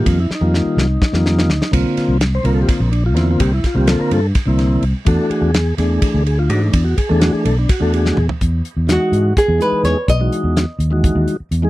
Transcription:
Already playing: tonewheel organ D#3 G3 A#3
0.06 fingered electric bass F2, tonewheel organ F4, kick, ride
0.20 tonewheel organ E4
0.30 muted fingered electric bass stroke, snare
0.35 tonewheel organ D#4
0.41 fingered electric bass F2, tonewheel organ D#3 G3 A#3 F4
0.54 snare
0.65 muted fingered electric bass stroke
0.77 fingered electric bass C2, snare
1.02 kick, snare
1.12 fingered electric bass F2, tonewheel organ D#3 G3 A#3 F4, snare
1.26 snare
1.39 snare
1.49 fingered electric bass D2, snare
1.62 snare
1.71 fingered electric bass C2, tonewheel organ D3 A#3 C4 F4, kick, ride, crash
1.97 muted fingered electric bass stroke, snare, ride
2.08 fingered electric bass C2
2.21 snare, ride
2.35 tonewheel organ C5
2.43 fingered electric bass C2, tonewheel organ D3 A#3 C4 F4 A#4, ride
2.54 tonewheel organ A4
2.62 tonewheel organ G4
2.69 tonewheel organ F4, kick, snare, ride
2.80 fingered electric bass A#1, tonewheel organ A#3
2.92 tonewheel organ D4, ride
3.06 tonewheel organ F4
3.14 fingered electric bass E2, tonewheel organ D3 A#3 C4 E4 F4, snare, ride
3.31 tonewheel organ F4
3.40 fingered electric bass C2, tonewheel organ G4, kick, ride
3.54 tonewheel organ E4
3.64 tonewheel organ F4, kick, snare, ride
3.74 fingered electric bass C2, tonewheel organ D3 A#3 C4 F4 G4
3.87 tonewheel organ A4, snare, ride
4.00 tonewheel organ A#4, muted fingered electric bass stroke
4.11 fingered electric bass G2, tonewheel organ A4, ride
4.35 kick, snare, ride
4.46 fingered electric bass C2, tonewheel organ D3 A#3 C4 E4
4.59 snare, ride
4.82 fingered electric bass C2, ride
5.05 fingered electric bass E2, tonewheel organ E3 A3 D4 F#4 A4, kick, ride
5.30 tonewheel organ G#4, muted fingered electric bass stroke, ride
5.42 fingered electric bass E2
5.54 snare, ride
5.77 fingered electric bass E2, tonewheel organ E3 A3 D4 G#4, snare, ride
6.02 muted fingered electric bass stroke, kick, ride
6.14 fingered electric bass D2
6.26 tonewheel organ G#4, ride
6.39 tonewheel organ F4
6.49 fingered electric bass G#2, tonewheel organ E3 A3 D4 F#4, ride
6.61 tonewheel organ A3
6.72 fingered electric bass E2, tonewheel organ D4, kick, ride
6.84 tonewheel organ F#4
6.98 tonewheel organ G#4, kick, ride
7.09 fingered electric bass E2, tonewheel organ E3 A3 D4 G#4 A4
7.20 tonewheel organ F#4, snare, ride
7.32 tonewheel organ G#4, muted fingered electric bass stroke
7.45 fingered electric bass B1, tonewheel organ A4, ride
7.59 tonewheel organ D4
7.69 tonewheel organ F#4, kick, snare, ride
7.80 fingered electric bass E2, tonewheel organ E3 A3 D4 F#4 A4
7.94 tonewheel organ G#4, ride
8.06 snare
8.17 fingered electric bass E2, mid tom
8.29 floor tom
8.41 fingered electric bass E2, kick, closed hi-hat
8.65 closed hi-hat
8.77 fingered electric bass E2
8.87 tonewheel organ E3 G#3 D#4 F#4, snare, closed hi-hat
8.92 nylon-string guitar F#4
9.12 fingered electric bass G#2, closed hi-hat
9.37 nylon-string guitar G#4, kick, snare, closed hi-hat
9.48 fingered electric bass E2
9.58 tonewheel organ E3 G#3 D#4 G#4, nylon-string guitar B4, closed hi-hat
9.72 muted fingered electric bass stroke
9.84 fingered electric bass E2, nylon-string guitar C#5, snare, closed hi-hat
10.08 fingered electric bass B1, nylon-string guitar D#5, kick, closed hi-hat
10.20 tonewheel organ E3 G#3 D#4 F#4
10.32 closed hi-hat
10.44 fingered electric bass E2
10.57 snare, closed hi-hat
10.79 fingered electric bass D#2, closed hi-hat
10.91 tonewheel organ E3 G#3 D#4 F#4
11.04 kick, closed hi-hat
11.15 fingered electric bass D#2
11.28 closed hi-hat
11.40 muted fingered electric bass stroke
11.51 fingered electric bass E2, closed hi-hat
11.62 tonewheel organ E3 G#3 D#4 G#4

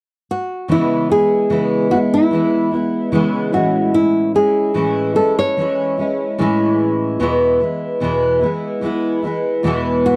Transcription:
0.31 nylon-string guitar F#4
0.68 steel-string acoustic guitar C#3 E3 G#3 B3 E4, nylon-string guitar E4
1.09 steel-string acoustic guitar G#3 B3 E4, nylon-string guitar G#4
1.50 steel-string acoustic guitar C#3 E3 G#3 B3 E4
1.90 steel-string acoustic guitar G#3 B3 E4, nylon-string guitar F#4
2.14 nylon-string guitar E4
2.31 steel-string acoustic guitar E3 G#3 B3 E4
2.72 steel-string acoustic guitar G#3 B3 E4
3.12 steel-string acoustic guitar C#3 E3 G#3 B3 E4
3.53 steel-string acoustic guitar A2 E3 G#3 C#4 E4, nylon-string guitar F#4
3.94 nylon-string guitar E4
4.34 steel-string acoustic guitar G#3 C#4 E4, nylon-string guitar G#4
4.74 steel-string acoustic guitar A2 E3 G#3 C#4 E4
5.15 steel-string acoustic guitar G#3 C#4 E4, nylon-string guitar A4
5.39 nylon-string guitar C#5
5.57 steel-string acoustic guitar E3 G#3 C#4 E4
5.98 steel-string acoustic guitar G#3 C#4 E4
6.38 steel-string acoustic guitar A2 E3 G#3 C#4 E4
7.20 steel-string acoustic guitar E2 B2 E3 G#3 B3 E4
7.60 steel-string acoustic guitar E3 G#3 B3 E4
8.00 steel-string acoustic guitar E2 B2 E3 G#3 B3 E4
8.41 steel-string acoustic guitar E3 G#3 B3 E4
8.81 steel-string acoustic guitar E3 G#3 B3 E4
9.22 steel-string acoustic guitar E3 G#3 B3 E4
9.63 steel-string acoustic guitar E2 B2 E3 G#3 B3 E4
10.06 nylon-string guitar F#4

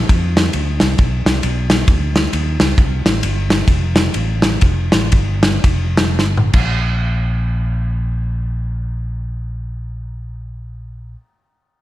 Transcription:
0.09 fingered electric bass F2, kick, ride
0.37 snare, ride
0.53 fingered electric bass D2, ride
0.80 fingered electric bass C2, snare, ride
0.98 fingered electric bass B1, kick, ride
1.25 fingered electric bass C2, snare, ride
1.43 fingered electric bass B1, ride
1.70 snare, ride
1.88 fingered electric bass D2, kick, ride
2.16 snare, ride
2.33 fingered electric bass D#2, ride
2.60 fingered electric bass C#2, snare, ride
2.78 fingered electric bass C2, kick, ride
3.05 fingered electric bass A1, snare, ride
3.23 fingered electric bass G1, ride
3.50 snare, ride
3.68 fingered electric bass F1, kick, ride
3.96 snare, ride
4.14 fingered electric bass A1, ride
4.42 snare, ride
4.61 fingered electric bass F1, kick, ride
4.92 fingered electric bass A1, snare, ride
5.12 fingered electric bass G1, kick, ride
5.43 snare, ride
5.64 fingered electric bass F1, kick, ride
5.97 snare, ride
6.19 fingered electric bass G1, snare
6.37 mid tom
6.53 fingered electric bass A#1, kick, crash

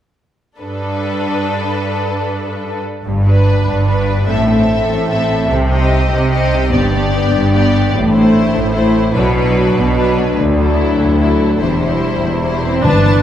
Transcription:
0.59 cello section G2, viola section D4, violin section A4 B4
3.04 double bass section G1, cello section G2, harp G2
3.24 viola section D4, harp G4, violin section B4
3.47 harp D5
3.65 double bass section G1, cello section G2, harp G5
3.86 viola section D4, violin section B4, harp B4
4.08 harp G4
4.26 double bass section A1, cello section A2, harp A2, viola section C4, violin section A4 E5
4.47 viola section C4, harp E4, violin section A4 E5
4.70 harp C5
4.87 double bass section A1, cello section A2, harp E5
5.08 viola section C4, harp A4, violin section A4 E5
5.31 harp E4
5.49 double bass section C2, cello section C3, harp C3
5.69 viola section C4, harp D#4, violin section G4 D#5
5.92 harp C5
6.10 double bass section C2, cello section C3, harp D#5
6.31 viola section C4, violin section G4 D#5, harp G4
6.52 harp D#4
6.71 double bass section G1, timpani G2, cello section G2, harp G2, viola section B3, violin section G4 D5
6.92 viola section B3, harp D4, violin section G4 D5
7.14 harp B4
7.32 double bass section G1, cello section G2, harp D5
7.52 viola section B3, violin section G4 D5, harp G4
7.74 harp D4
7.92 double bass section A1, cello section A2, harp A2
8.12 viola section A3, harp C4, violin section E4 C5
8.35 harp A4
8.54 double bass section A1, cello section A2, harp C5
8.73 viola section A3, violin section E4 C5, harp E4
8.95 harp C4
9.14 double bass section B1, cello section B2, harp B2, viola section F#3, violin section D4 B4
9.35 viola section F#3, harp B3, violin section D4 B4
9.57 harp F#4
9.75 double bass section B1, cello section B2, harp B4
9.95 viola section F#3, violin section D4 B4, harp D4
10.18 harp B3
10.35 cello section D2, double bass section D2, harp D3
10.57 viola section F#3, harp A3, violin section E4 A4
10.79 harp F#4
10.97 cello section D2, double bass section D2, harp A4
11.19 viola section F#3, harp E4, violin section E4 A4
11.40 harp A3
11.59 double bass section E1, cello section E2, harp E3, viola section G3, violin section E4 C5
11.79 viola section G3, violin section E4 C5, harp E4
12.02 harp C5
12.21 double bass section E1, cello section E2, harp E5
12.42 viola section G3, violin section E4 C5, harp G4
12.64 viola section C4, harp E4
12.82 double bass section G1, cello section G2, timpani G2, harp G2, viola section D4, violin section B4 A5
13.04 harp B3, violin section B4 A5

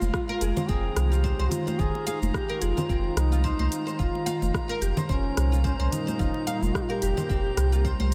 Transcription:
Already playing: ambient pad D#3 G#3 A#3 D#4 F4 A#4, duduk F4, synth texture A#5
0.01 sub bass F1, high conga, cabasa
0.14 kick, cross-stick, cabasa
0.29 oud A#4
0.41 sub bass F1, oud G#4, closed hi-hat, cabasa
0.56 oud C5, low conga, cabasa
0.69 sub bass F1, oud C4, duduk G#4, kick, muted conga, cabasa
0.74 ambient pad C5
0.96 sub bass C2, cross-stick, closed hi-hat, cabasa
1.04 duduk G#4
1.11 oud F4, duduk G4, cabasa
1.24 oud C5, kick, cabasa
1.39 sub bass C2, oud C5
1.51 duduk F4, closed hi-hat, low conga, cabasa
1.67 oud C5, high conga, cabasa
1.79 sub bass F1, oud F4, duduk G#4, kick, low conga, cabasa
1.95 muted conga
2.07 duduk G#4, oud F5, closed hi-hat, muted conga, cabasa
2.22 sub bass F1, high conga, cabasa
2.34 duduk G4, kick, cross-stick, cabasa
2.49 oud A#4
2.61 sub bass F1, duduk F4, oud G#4, closed hi-hat, cabasa
2.77 oud C5, low conga, cabasa
2.89 sub bass F1, oud C4, kick, cabasa
3.16 sub bass C2, duduk D#4, cross-stick, closed hi-hat, cabasa
3.32 oud F4, high conga, cabasa
3.44 duduk D#4, oud C5, kick, cabasa
3.59 sub bass C2, oud C5, high conga
3.72 closed hi-hat, muted conga, cabasa
3.87 oud C5, cabasa
3.99 sub bass F1, ambient pad A#2, oud F4, duduk F4, kick, cabasa
4.12 ambient pad A#3, muted conga
4.26 ambient pad G3 A#4, oud F5, closed hi-hat, muted conga, cabasa
4.42 sub bass F1, high conga, cabasa
4.54 kick, cross-stick, cabasa
4.69 oud A#4
4.81 sub bass F1, oud G4, closed hi-hat, cabasa
4.97 oud C5, low conga, cabasa
5.09 sub bass F1, duduk C#4, oud C5, kick, muted conga, cabasa
5.37 sub bass C2, cross-stick, closed hi-hat, cabasa
5.52 oud F4, cabasa
5.64 oud C5, kick, cabasa
5.80 sub bass C2, oud C5
5.92 duduk D#4, closed hi-hat, low conga, cabasa
6.07 oud C5, high conga, cabasa
6.19 sub bass F1, oud F4, kick, low conga, cabasa
6.34 muted conga
6.47 oud F5, closed hi-hat, muted conga, cabasa
6.62 sub bass F1, duduk F4, high conga, cabasa
6.75 duduk G4, kick, cross-stick, cabasa
6.82 duduk F4
6.90 duduk G4, oud A#4
7.02 sub bass F1, oud G4, closed hi-hat, cabasa
7.17 oud C5, low conga, cabasa
7.29 sub bass F1, oud C4, kick, cabasa
7.57 sub bass C2, cross-stick, closed hi-hat, cabasa
7.72 oud F4, high conga, cabasa
7.85 oud C5, kick, cabasa
8.00 sub bass C2, oud C5, high conga

